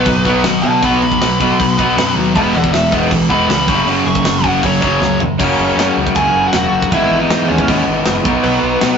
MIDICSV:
0, 0, Header, 1, 7, 480
1, 0, Start_track
1, 0, Key_signature, 5, "major"
1, 0, Tempo, 381437
1, 1038, Time_signature, 4, 2, 24, 8
1, 11298, End_track
2, 0, Start_track
2, 0, Title_t, "Lead electric guitar"
2, 0, Program_c, 0, 29
2, 0, Note_on_c, 0, 71, 88
2, 522, Note_off_c, 0, 71, 0
2, 785, Note_on_c, 0, 81, 100
2, 792, Note_on_c, 0, 78, 100
2, 1025, Note_off_c, 0, 81, 0
2, 1035, Note_off_c, 0, 78, 0
2, 1050, Note_on_c, 0, 78, 76
2, 1060, Note_on_c, 0, 83, 89
2, 1268, Note_off_c, 0, 78, 0
2, 1282, Note_off_c, 0, 83, 0
2, 1299, Note_on_c, 0, 83, 110
2, 2687, Note_off_c, 0, 83, 0
2, 2968, Note_on_c, 0, 83, 91
2, 2969, Note_on_c, 0, 78, 87
2, 3196, Note_off_c, 0, 83, 0
2, 3205, Note_off_c, 0, 78, 0
2, 3227, Note_on_c, 0, 74, 92
2, 3235, Note_on_c, 0, 78, 84
2, 3425, Note_off_c, 0, 78, 0
2, 3425, Note_on_c, 0, 76, 108
2, 3439, Note_off_c, 0, 74, 0
2, 3665, Note_off_c, 0, 76, 0
2, 4164, Note_on_c, 0, 83, 125
2, 4388, Note_off_c, 0, 83, 0
2, 4404, Note_on_c, 0, 83, 88
2, 4868, Note_off_c, 0, 83, 0
2, 5131, Note_on_c, 0, 85, 99
2, 5612, Note_off_c, 0, 85, 0
2, 5612, Note_on_c, 0, 78, 102
2, 5839, Note_off_c, 0, 78, 0
2, 5858, Note_on_c, 0, 73, 93
2, 6053, Note_off_c, 0, 73, 0
2, 6068, Note_on_c, 0, 73, 99
2, 6539, Note_off_c, 0, 73, 0
2, 6789, Note_on_c, 0, 73, 103
2, 6819, Note_on_c, 0, 61, 68
2, 7463, Note_off_c, 0, 73, 0
2, 7478, Note_off_c, 0, 61, 0
2, 7751, Note_on_c, 0, 80, 124
2, 7769, Note_on_c, 0, 68, 80
2, 8098, Note_off_c, 0, 68, 0
2, 8125, Note_off_c, 0, 80, 0
2, 8140, Note_on_c, 0, 66, 74
2, 8144, Note_on_c, 0, 78, 87
2, 8224, Note_off_c, 0, 66, 0
2, 8233, Note_off_c, 0, 78, 0
2, 8238, Note_on_c, 0, 66, 78
2, 8248, Note_on_c, 0, 78, 105
2, 8684, Note_off_c, 0, 66, 0
2, 8689, Note_off_c, 0, 78, 0
2, 8729, Note_on_c, 0, 76, 90
2, 8736, Note_on_c, 0, 64, 67
2, 9059, Note_off_c, 0, 64, 0
2, 9059, Note_on_c, 0, 63, 76
2, 9060, Note_off_c, 0, 76, 0
2, 9065, Note_on_c, 0, 75, 87
2, 9397, Note_off_c, 0, 63, 0
2, 9403, Note_on_c, 0, 61, 70
2, 9411, Note_on_c, 0, 73, 71
2, 9441, Note_off_c, 0, 75, 0
2, 9865, Note_off_c, 0, 61, 0
2, 9866, Note_off_c, 0, 73, 0
2, 10616, Note_on_c, 0, 71, 102
2, 10626, Note_on_c, 0, 59, 73
2, 11295, Note_off_c, 0, 71, 0
2, 11298, Note_off_c, 0, 59, 0
2, 11298, End_track
3, 0, Start_track
3, 0, Title_t, "Overdriven electric guitar"
3, 0, Program_c, 1, 29
3, 4617, Note_on_c, 1, 58, 91
3, 4628, Note_on_c, 1, 61, 97
3, 4835, Note_off_c, 1, 58, 0
3, 4845, Note_off_c, 1, 61, 0
3, 4850, Note_on_c, 1, 58, 100
3, 4860, Note_on_c, 1, 61, 99
3, 5069, Note_off_c, 1, 58, 0
3, 5084, Note_on_c, 1, 58, 75
3, 5086, Note_on_c, 1, 54, 72
3, 5096, Note_off_c, 1, 61, 0
3, 5302, Note_off_c, 1, 54, 0
3, 5310, Note_off_c, 1, 58, 0
3, 5317, Note_on_c, 1, 54, 97
3, 5325, Note_on_c, 1, 58, 116
3, 5534, Note_off_c, 1, 54, 0
3, 5548, Note_off_c, 1, 58, 0
3, 5549, Note_on_c, 1, 54, 93
3, 5563, Note_on_c, 1, 58, 92
3, 5573, Note_on_c, 1, 61, 104
3, 5780, Note_off_c, 1, 58, 0
3, 5784, Note_off_c, 1, 54, 0
3, 5795, Note_on_c, 1, 58, 91
3, 5799, Note_on_c, 1, 54, 81
3, 5812, Note_off_c, 1, 61, 0
3, 6021, Note_off_c, 1, 54, 0
3, 6033, Note_off_c, 1, 58, 0
3, 6036, Note_on_c, 1, 54, 93
3, 6048, Note_on_c, 1, 58, 114
3, 6057, Note_on_c, 1, 61, 117
3, 6270, Note_off_c, 1, 54, 0
3, 6277, Note_off_c, 1, 58, 0
3, 6285, Note_on_c, 1, 54, 85
3, 6292, Note_on_c, 1, 58, 92
3, 6294, Note_off_c, 1, 61, 0
3, 6518, Note_off_c, 1, 54, 0
3, 6522, Note_off_c, 1, 58, 0
3, 6540, Note_on_c, 1, 54, 73
3, 6551, Note_on_c, 1, 58, 84
3, 6766, Note_off_c, 1, 54, 0
3, 6771, Note_off_c, 1, 58, 0
3, 6814, Note_on_c, 1, 66, 111
3, 8710, Note_off_c, 1, 66, 0
3, 11298, End_track
4, 0, Start_track
4, 0, Title_t, "Overdriven electric guitar"
4, 0, Program_c, 2, 29
4, 85, Note_on_c, 2, 54, 85
4, 86, Note_on_c, 2, 47, 85
4, 288, Note_off_c, 2, 47, 0
4, 297, Note_off_c, 2, 54, 0
4, 303, Note_on_c, 2, 47, 108
4, 316, Note_on_c, 2, 54, 102
4, 328, Note_on_c, 2, 59, 115
4, 536, Note_off_c, 2, 47, 0
4, 543, Note_off_c, 2, 54, 0
4, 549, Note_off_c, 2, 59, 0
4, 561, Note_on_c, 2, 54, 77
4, 564, Note_on_c, 2, 47, 64
4, 776, Note_off_c, 2, 54, 0
4, 777, Note_off_c, 2, 47, 0
4, 794, Note_on_c, 2, 47, 68
4, 794, Note_on_c, 2, 54, 77
4, 1012, Note_off_c, 2, 54, 0
4, 1013, Note_off_c, 2, 47, 0
4, 1050, Note_on_c, 2, 47, 92
4, 1051, Note_on_c, 2, 54, 83
4, 1060, Note_on_c, 2, 59, 91
4, 1270, Note_off_c, 2, 47, 0
4, 1271, Note_off_c, 2, 54, 0
4, 1275, Note_off_c, 2, 59, 0
4, 1289, Note_on_c, 2, 47, 70
4, 1297, Note_on_c, 2, 54, 77
4, 1500, Note_off_c, 2, 47, 0
4, 1504, Note_off_c, 2, 54, 0
4, 1535, Note_on_c, 2, 47, 74
4, 1535, Note_on_c, 2, 54, 83
4, 1743, Note_off_c, 2, 47, 0
4, 1743, Note_off_c, 2, 54, 0
4, 1763, Note_on_c, 2, 47, 76
4, 1769, Note_on_c, 2, 54, 99
4, 1777, Note_on_c, 2, 59, 108
4, 1987, Note_off_c, 2, 47, 0
4, 1990, Note_off_c, 2, 54, 0
4, 1994, Note_off_c, 2, 59, 0
4, 2013, Note_on_c, 2, 47, 94
4, 2018, Note_on_c, 2, 54, 97
4, 2223, Note_off_c, 2, 47, 0
4, 2225, Note_off_c, 2, 54, 0
4, 2244, Note_on_c, 2, 47, 84
4, 2252, Note_on_c, 2, 54, 98
4, 2261, Note_on_c, 2, 59, 97
4, 2464, Note_off_c, 2, 54, 0
4, 2467, Note_off_c, 2, 47, 0
4, 2476, Note_off_c, 2, 59, 0
4, 2480, Note_on_c, 2, 54, 85
4, 2481, Note_on_c, 2, 47, 69
4, 2696, Note_off_c, 2, 54, 0
4, 2697, Note_off_c, 2, 47, 0
4, 2721, Note_on_c, 2, 47, 71
4, 2729, Note_on_c, 2, 54, 86
4, 2937, Note_off_c, 2, 47, 0
4, 2941, Note_off_c, 2, 54, 0
4, 2964, Note_on_c, 2, 52, 95
4, 2966, Note_on_c, 2, 56, 106
4, 2974, Note_on_c, 2, 59, 109
4, 3188, Note_off_c, 2, 52, 0
4, 3189, Note_off_c, 2, 56, 0
4, 3193, Note_off_c, 2, 59, 0
4, 3208, Note_on_c, 2, 52, 66
4, 3213, Note_on_c, 2, 56, 69
4, 3407, Note_off_c, 2, 52, 0
4, 3409, Note_off_c, 2, 56, 0
4, 3422, Note_on_c, 2, 52, 81
4, 3424, Note_on_c, 2, 56, 87
4, 3647, Note_off_c, 2, 52, 0
4, 3648, Note_off_c, 2, 56, 0
4, 3665, Note_on_c, 2, 52, 82
4, 3674, Note_on_c, 2, 56, 92
4, 3677, Note_on_c, 2, 59, 92
4, 3895, Note_off_c, 2, 52, 0
4, 3900, Note_off_c, 2, 56, 0
4, 3904, Note_off_c, 2, 59, 0
4, 3910, Note_on_c, 2, 52, 94
4, 3915, Note_on_c, 2, 56, 99
4, 4125, Note_off_c, 2, 52, 0
4, 4133, Note_off_c, 2, 56, 0
4, 4141, Note_on_c, 2, 52, 87
4, 4155, Note_on_c, 2, 56, 103
4, 4163, Note_on_c, 2, 59, 98
4, 4369, Note_off_c, 2, 56, 0
4, 4372, Note_off_c, 2, 52, 0
4, 4384, Note_on_c, 2, 56, 95
4, 4387, Note_off_c, 2, 59, 0
4, 4387, Note_on_c, 2, 52, 74
4, 4608, Note_off_c, 2, 56, 0
4, 4610, Note_off_c, 2, 52, 0
4, 4622, Note_on_c, 2, 42, 90
4, 4627, Note_on_c, 2, 49, 94
4, 4637, Note_on_c, 2, 54, 99
4, 4850, Note_off_c, 2, 42, 0
4, 4859, Note_off_c, 2, 49, 0
4, 4864, Note_off_c, 2, 54, 0
4, 4865, Note_on_c, 2, 42, 94
4, 4875, Note_on_c, 2, 49, 99
4, 4878, Note_on_c, 2, 54, 92
4, 5086, Note_off_c, 2, 42, 0
4, 5093, Note_off_c, 2, 49, 0
4, 5102, Note_on_c, 2, 42, 75
4, 5105, Note_off_c, 2, 54, 0
4, 5108, Note_on_c, 2, 49, 74
4, 5327, Note_off_c, 2, 42, 0
4, 5330, Note_off_c, 2, 49, 0
4, 5350, Note_on_c, 2, 42, 89
4, 5357, Note_on_c, 2, 49, 90
4, 5571, Note_off_c, 2, 42, 0
4, 5574, Note_off_c, 2, 49, 0
4, 5590, Note_on_c, 2, 42, 80
4, 5598, Note_on_c, 2, 49, 91
4, 5604, Note_on_c, 2, 54, 90
4, 5821, Note_off_c, 2, 42, 0
4, 5824, Note_off_c, 2, 49, 0
4, 5827, Note_off_c, 2, 54, 0
4, 5835, Note_on_c, 2, 42, 85
4, 5846, Note_on_c, 2, 49, 102
4, 6053, Note_off_c, 2, 42, 0
4, 6059, Note_off_c, 2, 49, 0
4, 6069, Note_on_c, 2, 42, 91
4, 6081, Note_on_c, 2, 49, 100
4, 6091, Note_on_c, 2, 54, 95
4, 6294, Note_off_c, 2, 42, 0
4, 6306, Note_off_c, 2, 49, 0
4, 6309, Note_on_c, 2, 42, 79
4, 6311, Note_off_c, 2, 54, 0
4, 6324, Note_on_c, 2, 49, 78
4, 6530, Note_off_c, 2, 42, 0
4, 6538, Note_off_c, 2, 49, 0
4, 6559, Note_on_c, 2, 49, 90
4, 6560, Note_on_c, 2, 42, 75
4, 6768, Note_off_c, 2, 42, 0
4, 6775, Note_off_c, 2, 49, 0
4, 6783, Note_on_c, 2, 42, 93
4, 6789, Note_on_c, 2, 49, 91
4, 6803, Note_on_c, 2, 54, 102
4, 6814, Note_on_c, 2, 58, 114
4, 6824, Note_on_c, 2, 61, 105
4, 7725, Note_off_c, 2, 42, 0
4, 7739, Note_off_c, 2, 49, 0
4, 7740, Note_on_c, 2, 42, 83
4, 7745, Note_off_c, 2, 54, 0
4, 7751, Note_off_c, 2, 58, 0
4, 7755, Note_on_c, 2, 49, 86
4, 7756, Note_off_c, 2, 61, 0
4, 7773, Note_on_c, 2, 54, 85
4, 7778, Note_on_c, 2, 58, 88
4, 7789, Note_on_c, 2, 61, 88
4, 8693, Note_off_c, 2, 42, 0
4, 8701, Note_off_c, 2, 49, 0
4, 8710, Note_off_c, 2, 54, 0
4, 8710, Note_on_c, 2, 44, 83
4, 8712, Note_off_c, 2, 58, 0
4, 8716, Note_on_c, 2, 52, 93
4, 8718, Note_off_c, 2, 61, 0
4, 8736, Note_on_c, 2, 56, 100
4, 8744, Note_on_c, 2, 59, 114
4, 8750, Note_on_c, 2, 64, 91
4, 9635, Note_off_c, 2, 44, 0
4, 9648, Note_off_c, 2, 52, 0
4, 9650, Note_on_c, 2, 44, 90
4, 9659, Note_off_c, 2, 56, 0
4, 9663, Note_on_c, 2, 52, 93
4, 9673, Note_off_c, 2, 64, 0
4, 9674, Note_on_c, 2, 56, 92
4, 9677, Note_off_c, 2, 59, 0
4, 9682, Note_on_c, 2, 59, 98
4, 9688, Note_on_c, 2, 64, 80
4, 10368, Note_off_c, 2, 44, 0
4, 10368, Note_off_c, 2, 52, 0
4, 10373, Note_on_c, 2, 47, 100
4, 10380, Note_off_c, 2, 56, 0
4, 10385, Note_on_c, 2, 54, 101
4, 10387, Note_off_c, 2, 64, 0
4, 10399, Note_off_c, 2, 59, 0
4, 10404, Note_on_c, 2, 59, 94
4, 10415, Note_on_c, 2, 63, 99
4, 11298, Note_off_c, 2, 47, 0
4, 11298, Note_off_c, 2, 54, 0
4, 11298, Note_off_c, 2, 59, 0
4, 11298, Note_off_c, 2, 63, 0
4, 11298, End_track
5, 0, Start_track
5, 0, Title_t, "Overdriven electric guitar"
5, 0, Program_c, 3, 29
5, 0, Note_on_c, 3, 47, 102
5, 0, Note_on_c, 3, 54, 99
5, 0, Note_on_c, 3, 59, 122
5, 308, Note_off_c, 3, 47, 0
5, 316, Note_off_c, 3, 54, 0
5, 318, Note_off_c, 3, 59, 0
5, 357, Note_on_c, 3, 47, 70
5, 538, Note_off_c, 3, 47, 0
5, 588, Note_on_c, 3, 59, 91
5, 1069, Note_off_c, 3, 59, 0
5, 2507, Note_on_c, 3, 59, 83
5, 2944, Note_on_c, 3, 40, 103
5, 2959, Note_off_c, 3, 59, 0
5, 2967, Note_on_c, 3, 47, 108
5, 4138, Note_off_c, 3, 40, 0
5, 4149, Note_off_c, 3, 47, 0
5, 4163, Note_on_c, 3, 47, 86
5, 4181, Note_on_c, 3, 40, 70
5, 4366, Note_off_c, 3, 40, 0
5, 4381, Note_on_c, 3, 40, 82
5, 4383, Note_off_c, 3, 47, 0
5, 4398, Note_on_c, 3, 47, 78
5, 4616, Note_off_c, 3, 40, 0
5, 4625, Note_off_c, 3, 47, 0
5, 5851, Note_on_c, 3, 54, 87
5, 6036, Note_off_c, 3, 54, 0
5, 11298, End_track
6, 0, Start_track
6, 0, Title_t, "Picked electric bass"
6, 0, Program_c, 4, 34
6, 79, Note_on_c, 4, 30, 83
6, 304, Note_off_c, 4, 30, 0
6, 325, Note_on_c, 4, 35, 87
6, 541, Note_off_c, 4, 35, 0
6, 548, Note_on_c, 4, 32, 98
6, 779, Note_off_c, 4, 32, 0
6, 798, Note_on_c, 4, 47, 86
6, 1024, Note_off_c, 4, 47, 0
6, 1037, Note_on_c, 4, 35, 93
6, 1264, Note_off_c, 4, 35, 0
6, 1279, Note_on_c, 4, 35, 90
6, 1505, Note_off_c, 4, 35, 0
6, 1520, Note_on_c, 4, 35, 96
6, 1746, Note_off_c, 4, 35, 0
6, 1770, Note_on_c, 4, 35, 81
6, 1991, Note_off_c, 4, 35, 0
6, 2016, Note_on_c, 4, 35, 81
6, 2461, Note_off_c, 4, 35, 0
6, 2484, Note_on_c, 4, 42, 100
6, 2709, Note_off_c, 4, 42, 0
6, 2720, Note_on_c, 4, 39, 89
6, 2946, Note_off_c, 4, 39, 0
6, 2966, Note_on_c, 4, 28, 88
6, 3189, Note_off_c, 4, 28, 0
6, 3201, Note_on_c, 4, 28, 87
6, 3427, Note_off_c, 4, 28, 0
6, 3440, Note_on_c, 4, 28, 92
6, 3666, Note_off_c, 4, 28, 0
6, 3684, Note_on_c, 4, 28, 95
6, 3908, Note_off_c, 4, 28, 0
6, 3919, Note_on_c, 4, 35, 101
6, 4146, Note_off_c, 4, 35, 0
6, 4155, Note_on_c, 4, 28, 84
6, 4384, Note_off_c, 4, 28, 0
6, 4391, Note_on_c, 4, 37, 94
6, 4622, Note_off_c, 4, 37, 0
6, 4635, Note_on_c, 4, 30, 86
6, 4849, Note_off_c, 4, 30, 0
6, 4857, Note_on_c, 4, 30, 94
6, 5089, Note_off_c, 4, 30, 0
6, 5097, Note_on_c, 4, 30, 104
6, 5334, Note_off_c, 4, 30, 0
6, 5342, Note_on_c, 4, 30, 88
6, 5576, Note_off_c, 4, 30, 0
6, 5586, Note_on_c, 4, 30, 88
6, 5819, Note_off_c, 4, 30, 0
6, 5828, Note_on_c, 4, 30, 83
6, 6285, Note_off_c, 4, 30, 0
6, 6313, Note_on_c, 4, 37, 94
6, 6542, Note_off_c, 4, 37, 0
6, 6561, Note_on_c, 4, 30, 92
6, 6779, Note_off_c, 4, 30, 0
6, 6787, Note_on_c, 4, 30, 87
6, 6947, Note_off_c, 4, 30, 0
6, 7025, Note_on_c, 4, 30, 100
6, 7186, Note_off_c, 4, 30, 0
6, 7257, Note_on_c, 4, 42, 91
6, 7421, Note_off_c, 4, 42, 0
6, 7515, Note_on_c, 4, 37, 94
6, 7672, Note_off_c, 4, 37, 0
6, 7748, Note_on_c, 4, 37, 91
6, 7908, Note_off_c, 4, 37, 0
6, 7984, Note_on_c, 4, 30, 88
6, 8145, Note_off_c, 4, 30, 0
6, 8229, Note_on_c, 4, 28, 89
6, 8388, Note_off_c, 4, 28, 0
6, 8466, Note_on_c, 4, 30, 90
6, 8627, Note_off_c, 4, 30, 0
6, 8704, Note_on_c, 4, 32, 94
6, 8865, Note_off_c, 4, 32, 0
6, 8947, Note_on_c, 4, 32, 95
6, 9107, Note_off_c, 4, 32, 0
6, 9187, Note_on_c, 4, 44, 95
6, 9346, Note_off_c, 4, 44, 0
6, 9437, Note_on_c, 4, 39, 90
6, 9593, Note_off_c, 4, 39, 0
6, 9670, Note_on_c, 4, 39, 95
6, 9828, Note_off_c, 4, 39, 0
6, 9911, Note_on_c, 4, 32, 94
6, 10069, Note_off_c, 4, 32, 0
6, 10151, Note_on_c, 4, 30, 98
6, 10309, Note_off_c, 4, 30, 0
6, 10382, Note_on_c, 4, 35, 82
6, 10543, Note_off_c, 4, 35, 0
6, 10622, Note_on_c, 4, 35, 100
6, 10783, Note_off_c, 4, 35, 0
6, 10852, Note_on_c, 4, 35, 93
6, 11016, Note_off_c, 4, 35, 0
6, 11112, Note_on_c, 4, 47, 94
6, 11269, Note_off_c, 4, 47, 0
6, 11298, End_track
7, 0, Start_track
7, 0, Title_t, "Drums"
7, 67, Note_on_c, 9, 49, 90
7, 75, Note_on_c, 9, 36, 127
7, 193, Note_off_c, 9, 49, 0
7, 201, Note_off_c, 9, 36, 0
7, 313, Note_on_c, 9, 49, 55
7, 318, Note_on_c, 9, 36, 84
7, 439, Note_off_c, 9, 49, 0
7, 444, Note_off_c, 9, 36, 0
7, 556, Note_on_c, 9, 38, 124
7, 556, Note_on_c, 9, 49, 86
7, 682, Note_off_c, 9, 38, 0
7, 682, Note_off_c, 9, 49, 0
7, 798, Note_on_c, 9, 49, 56
7, 924, Note_off_c, 9, 49, 0
7, 1035, Note_on_c, 9, 49, 80
7, 1039, Note_on_c, 9, 36, 98
7, 1161, Note_off_c, 9, 49, 0
7, 1165, Note_off_c, 9, 36, 0
7, 1284, Note_on_c, 9, 49, 61
7, 1404, Note_on_c, 9, 36, 82
7, 1410, Note_off_c, 9, 49, 0
7, 1530, Note_off_c, 9, 36, 0
7, 1531, Note_on_c, 9, 38, 110
7, 1531, Note_on_c, 9, 49, 84
7, 1656, Note_off_c, 9, 38, 0
7, 1656, Note_off_c, 9, 49, 0
7, 1768, Note_on_c, 9, 36, 94
7, 1778, Note_on_c, 9, 49, 61
7, 1894, Note_off_c, 9, 36, 0
7, 1904, Note_off_c, 9, 49, 0
7, 2010, Note_on_c, 9, 36, 117
7, 2018, Note_on_c, 9, 49, 89
7, 2136, Note_off_c, 9, 36, 0
7, 2143, Note_off_c, 9, 49, 0
7, 2251, Note_on_c, 9, 36, 91
7, 2265, Note_on_c, 9, 49, 59
7, 2377, Note_off_c, 9, 36, 0
7, 2391, Note_off_c, 9, 49, 0
7, 2498, Note_on_c, 9, 38, 127
7, 2498, Note_on_c, 9, 49, 86
7, 2624, Note_off_c, 9, 38, 0
7, 2624, Note_off_c, 9, 49, 0
7, 2736, Note_on_c, 9, 49, 60
7, 2861, Note_off_c, 9, 49, 0
7, 2964, Note_on_c, 9, 36, 117
7, 2968, Note_on_c, 9, 49, 80
7, 3090, Note_off_c, 9, 36, 0
7, 3094, Note_off_c, 9, 49, 0
7, 3200, Note_on_c, 9, 49, 66
7, 3319, Note_on_c, 9, 36, 92
7, 3326, Note_off_c, 9, 49, 0
7, 3444, Note_off_c, 9, 36, 0
7, 3446, Note_on_c, 9, 38, 107
7, 3446, Note_on_c, 9, 49, 88
7, 3572, Note_off_c, 9, 38, 0
7, 3572, Note_off_c, 9, 49, 0
7, 3678, Note_on_c, 9, 36, 96
7, 3689, Note_on_c, 9, 49, 63
7, 3804, Note_off_c, 9, 36, 0
7, 3815, Note_off_c, 9, 49, 0
7, 3917, Note_on_c, 9, 36, 120
7, 3927, Note_on_c, 9, 49, 88
7, 4042, Note_off_c, 9, 36, 0
7, 4053, Note_off_c, 9, 49, 0
7, 4155, Note_on_c, 9, 36, 81
7, 4158, Note_on_c, 9, 49, 56
7, 4281, Note_off_c, 9, 36, 0
7, 4284, Note_off_c, 9, 49, 0
7, 4404, Note_on_c, 9, 38, 121
7, 4404, Note_on_c, 9, 49, 86
7, 4530, Note_off_c, 9, 38, 0
7, 4530, Note_off_c, 9, 49, 0
7, 4633, Note_on_c, 9, 36, 106
7, 4639, Note_on_c, 9, 49, 67
7, 4758, Note_off_c, 9, 36, 0
7, 4765, Note_off_c, 9, 49, 0
7, 4874, Note_on_c, 9, 49, 80
7, 4999, Note_off_c, 9, 49, 0
7, 5108, Note_on_c, 9, 49, 59
7, 5226, Note_on_c, 9, 36, 98
7, 5234, Note_off_c, 9, 49, 0
7, 5350, Note_on_c, 9, 38, 127
7, 5350, Note_on_c, 9, 49, 91
7, 5351, Note_off_c, 9, 36, 0
7, 5476, Note_off_c, 9, 38, 0
7, 5476, Note_off_c, 9, 49, 0
7, 5586, Note_on_c, 9, 36, 88
7, 5586, Note_on_c, 9, 49, 67
7, 5711, Note_off_c, 9, 36, 0
7, 5712, Note_off_c, 9, 49, 0
7, 5828, Note_on_c, 9, 36, 108
7, 5834, Note_on_c, 9, 49, 90
7, 5953, Note_off_c, 9, 36, 0
7, 5960, Note_off_c, 9, 49, 0
7, 6069, Note_on_c, 9, 36, 94
7, 6077, Note_on_c, 9, 49, 60
7, 6195, Note_off_c, 9, 36, 0
7, 6203, Note_off_c, 9, 49, 0
7, 6315, Note_on_c, 9, 38, 65
7, 6440, Note_off_c, 9, 38, 0
7, 6548, Note_on_c, 9, 43, 107
7, 6674, Note_off_c, 9, 43, 0
7, 6791, Note_on_c, 9, 36, 118
7, 6798, Note_on_c, 9, 49, 61
7, 6798, Note_on_c, 9, 57, 122
7, 6916, Note_off_c, 9, 36, 0
7, 6924, Note_off_c, 9, 49, 0
7, 6924, Note_off_c, 9, 57, 0
7, 7286, Note_on_c, 9, 38, 120
7, 7286, Note_on_c, 9, 49, 73
7, 7412, Note_off_c, 9, 38, 0
7, 7412, Note_off_c, 9, 49, 0
7, 7633, Note_on_c, 9, 36, 87
7, 7738, Note_on_c, 9, 49, 65
7, 7750, Note_off_c, 9, 36, 0
7, 7750, Note_on_c, 9, 36, 103
7, 7864, Note_off_c, 9, 49, 0
7, 7875, Note_off_c, 9, 36, 0
7, 8215, Note_on_c, 9, 38, 127
7, 8215, Note_on_c, 9, 49, 61
7, 8341, Note_off_c, 9, 38, 0
7, 8341, Note_off_c, 9, 49, 0
7, 8587, Note_on_c, 9, 36, 93
7, 8706, Note_on_c, 9, 49, 61
7, 8710, Note_off_c, 9, 36, 0
7, 8710, Note_on_c, 9, 36, 106
7, 8832, Note_off_c, 9, 49, 0
7, 8835, Note_off_c, 9, 36, 0
7, 9192, Note_on_c, 9, 38, 119
7, 9192, Note_on_c, 9, 49, 74
7, 9318, Note_off_c, 9, 38, 0
7, 9318, Note_off_c, 9, 49, 0
7, 9544, Note_on_c, 9, 36, 90
7, 9668, Note_off_c, 9, 36, 0
7, 9668, Note_on_c, 9, 36, 113
7, 9668, Note_on_c, 9, 49, 80
7, 9794, Note_off_c, 9, 36, 0
7, 9794, Note_off_c, 9, 49, 0
7, 10137, Note_on_c, 9, 38, 115
7, 10137, Note_on_c, 9, 49, 79
7, 10263, Note_off_c, 9, 38, 0
7, 10263, Note_off_c, 9, 49, 0
7, 10384, Note_on_c, 9, 36, 121
7, 10510, Note_off_c, 9, 36, 0
7, 10617, Note_on_c, 9, 49, 73
7, 10743, Note_off_c, 9, 49, 0
7, 11092, Note_on_c, 9, 38, 126
7, 11092, Note_on_c, 9, 49, 75
7, 11217, Note_off_c, 9, 38, 0
7, 11217, Note_off_c, 9, 49, 0
7, 11298, End_track
0, 0, End_of_file